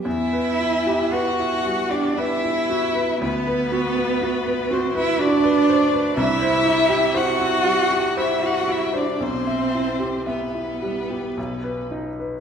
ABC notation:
X:1
M:3/4
L:1/16
Q:1/4=58
K:Em
V:1 name="Violin"
e4 f3 d e4 | B6 c e d4 | e4 f4 e f e d | c4 B6 z2 |]
V:2 name="Grand piano"
E,, B E G B E G, G B E F B | D,, B F B F B F B F B c B | C,, c E G c E G, G c E F c | B,,, e E G e E G, G B,,, B ^D B |]
V:3 name="Cello"
E4 F3 D E4 | B,6 C E D4 | E4 F4 E F E D | C4 B,6 z2 |]